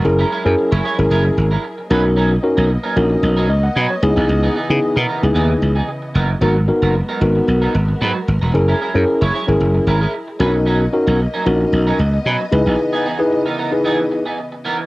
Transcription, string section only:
\new Staff \with { instrumentName = "String section" } { \time 4/4 \key cis \dorian \tempo 4 = 113 << { <gis' ais'>2.~ <gis' ais'>8 b8~ | b1~ | b1 | ais'1 |
gis'2.~ gis'8 b8~ | b1~ | b1 | } \\ { <fis e'>2.~ <fis e'>8 <ais dis''>8~ | <ais dis''>2.~ <ais dis''>8 <cis e>8~ | <cis e>1 | <gis b fis'>1 |
<fis e'>2.~ <fis e'>8 <ais dis''>8~ | <ais dis''>2.~ <ais dis''>8 <cis e>8~ | <cis e>1 | } >> }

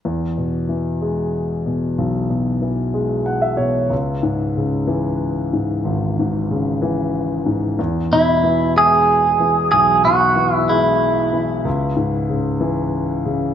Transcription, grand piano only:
<<
  \new Staff \with { instrumentName = "Grand piano" } { \time 6/8 \key e \major \tempo 4. = 62 r2. | r2 fis''16 e''16 cis''8 | r2. | r2. |
r2. | r2. | r2. | }
  \new Staff \with { instrumentName = "Grand piano" } { \clef bass \time 6/8 \key e \major e,8 b,8 e8 gis4 b,8 | b,,8 b,8 e8 gis4 b,8 | cis,8 gis,8 cis8 e4 gis,8 | gis,,8 gis,8 cis8 e4 gis,8 |
e,8 b,8 e8 gis4 e8 | b,,8 b,8 e8 gis4 e8 | cis,8 gis,8 cis8 e4 cis8 | }
>>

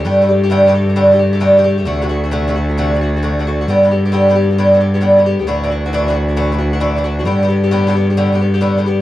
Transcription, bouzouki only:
\new Staff \with { instrumentName = "Bouzouki" } { \time 12/8 \key g \major \tempo 4. = 133 <g, d a g'>8 <g, d a g'>16 <d a g'>8 <d a g'>16 <g, d a g'>8 <g, d a g'>16 <d a g'>8 <d a g'>16 <g, d a g'>8 <g, d a g'>16 <d a g'>8 <d a g'>16 <g, d a g'>8 <g, d a g'>16 <d a g'>8 <d a g'>16 | <c d a fis'>8 <c d a fis'>16 <d a fis'>8 <d a fis'>16 <c d a fis'>8 <c d a fis'>16 <d a fis'>8 <d a fis'>16 <c d a fis'>8 <c d a fis'>16 <d a fis'>8 <d a fis'>16 <c d a fis'>8 <c d a fis'>16 <d a fis'>8 <d a fis'>16 | <g, d b g'>8 <g, d b g'>16 <d b g'>8 <d b g'>16 <g, d b g'>8 <g, d b g'>16 <d b g'>8 <d b g'>16 <g, d b g'>8 <g, d b g'>16 <d b g'>8 <d b g'>16 <g, d b g'>8 <g, d b g'>16 <d b g'>8 <d b g'>16 | <a, e d' fis'>8 <a, e d' fis'>16 <e d' fis'>8 <e d' fis'>16 <a, e d' fis'>8 <a, e d' fis'>16 <e d' fis'>8 <e d' fis'>16 <a, e d' fis'>8 <a, e d' fis'>16 <e d' fis'>8 <e d' fis'>16 <a, e d' fis'>8 <a, e d' fis'>16 <e d' fis'>8 <e d' fis'>16 |
<a, d b g'>8 <a, d b g'>16 <d b g'>8 <d b g'>16 <a, d b g'>8 <a, d b g'>16 <d b g'>8 <d b g'>16 <a, d b g'>8 <a, d b g'>16 <d b g'>8 <d b g'>16 <a, d b g'>8 <a, d b g'>16 <d b g'>8 r16 | }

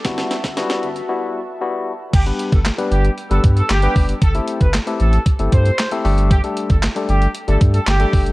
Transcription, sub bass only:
\new Staff \with { instrumentName = "Sub bass" } { \clef bass \time 4/4 \key g \major \tempo 4 = 115 g,,8 r16 g,,8 r16 g,,8 r2 | g,,8 r16 g,,8 r16 g,,8 r16 g,,16 g,8 g,,8 fis,,8 | g,,8 r16 g,,8 r16 a,,8 r16 g,,16 g,8 r8 g,,8~ | g,,8 r16 g,,8 r16 g,,8 r16 g,,16 g,8 g,,8 fis,,8 | }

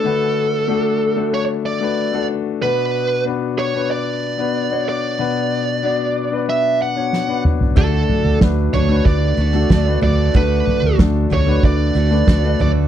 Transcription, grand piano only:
<<
  \new Staff \with { instrumentName = "Grand piano" } { \time 4/4 \key d \major \tempo 4 = 93 <a d' fis' b'>8. r16 <a d' fis' a'>8 r16 <a d' fis' a'>8. r16 <a d' fis' b'>16 r16 <a d' fis' a'>8 r16 | <b d' fis' b'>8. r16 <b d' fis' b'>8 r16 <b d' fis' b'>8. r16 <b d' fis' b'>16 r16 <b d' fis' cis''>8 r16 | <b d' fis' b'>8. r16 <b d' fis' d''>8 r16 <b d' fis' b'>8. r16 <b d' fis' cis''>16 r16 <b d' fis' b'>8 r16 | <a d' fis' a'>8. r16 <a d' fis' b'>8 r16 <a d' fis' b'>8. r16 <a d' fis' a'>16 r16 <a d' fis' b'>8 r16 |
<a d' fis' a'>8. r16 <a d' fis' a'>8 r16 <a d' fis' b'>8. r16 <a d' fis' b'>16 r16 <a d' fis' b'>8 r16 | }
  \new Staff \with { instrumentName = "Grand piano" } { \clef bass \time 4/4 \key d \major d4. r2 r8 | b,4. r2 r8 | b,4. r2 r8 | d4. r2 r8 |
d4. r2 r8 | }
>>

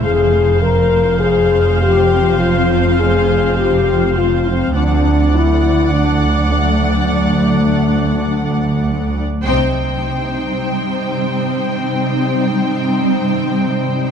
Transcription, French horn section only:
\new Staff \with { instrumentName = "French horn section" } { \time 4/4 \key c \minor \tempo 4 = 102 aes'4 bes'4 aes'4 g'4 | f'4 aes'4 g'4 f'8 c'8 | d'4 e'4 d'4 a4 | a2.~ a8 r8 |
r1 | r1 | }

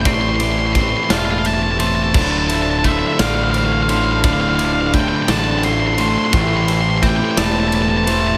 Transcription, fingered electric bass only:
\new Staff \with { instrumentName = "Fingered electric bass" } { \clef bass \time 6/8 \key d \minor \tempo 4. = 57 a,,4. e,,4. | d,,4. a,,4. | d,,4. a,,4. | a,,4. e,,4. | }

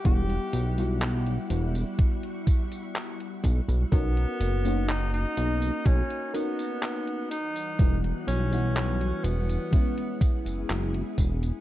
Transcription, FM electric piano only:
\new Staff \with { instrumentName = "FM electric piano" } { \time 4/4 \key e \lydian \tempo 4 = 62 <g b e' fis''>8. <g b e' fis'>2.~ <g b e' fis'>16 | <cis' dis' fis' ais'>8. <ais cis' dis' fis'>4.~ <ais cis' dis' fis'>16 <cis' dis' fis' ais'>4 r8 | <g b e' fis'>8. <g b e' fis'>4~ <g b e' fis'>16 <gis b cis' e'>4. r8 | }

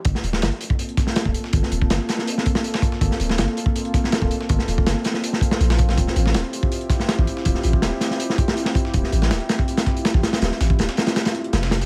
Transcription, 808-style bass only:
\new Staff \with { instrumentName = "808-style bass" } { \clef bass \time 4/4 \key g \dorian \tempo 4 = 162 g,,16 r16 d,,8 g,,16 r2 d,,16 r8 | g,,16 r16 d,,8 g,,16 r2 r8. | g,,16 r16 d,,8 g,,16 r2 d,,16 r8 | g,,16 r16 d,,8 g,,16 r4. r16 bes,,4 |
d,,16 r16 a,,8 d,,16 r2 a,,16 r8 | d,,16 r16 a,,8 d,,16 r2 r8. | d,,16 r16 a,,8 d,,16 r2 a,,16 r8 | d,,16 r16 a,,8 d,,16 r4. r16 f,,4 | }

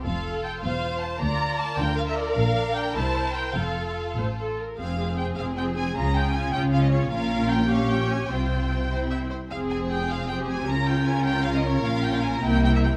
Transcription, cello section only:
\new Staff \with { instrumentName = "Cello section" } { \clef bass \time 6/8 \key f \major \tempo 4. = 102 f,4. e,4. | d,4. d4. | bes,4. c4. | f,4. a,4. |
\key f \minor f,4. f,4. | des4. des4. | bes,2. | c2~ c8 r8 |
f,2. | des2. | bes,4. c4. | }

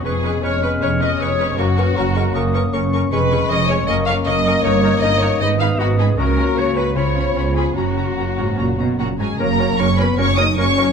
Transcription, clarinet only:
\new Staff \with { instrumentName = "Clarinet" } { \time 4/4 \key fis \major \tempo 4 = 155 gis'4 cis''8 b'8 cis''8 dis''8 cis''4 | fis'2~ fis'8 r4. | b'4 dis''8 cis''8 dis''8 eis''8 dis''4 | cis''4 dis''8 cis''8 dis''8 eis''8 fis'8 gis'8 |
ais'4 cis''8 b'8 cis''4. gis'8 | fis'2. r4 | ais'8 ais'8 ais'8 ais'8 ais'8 ais'8 ais'8 ais'8 | }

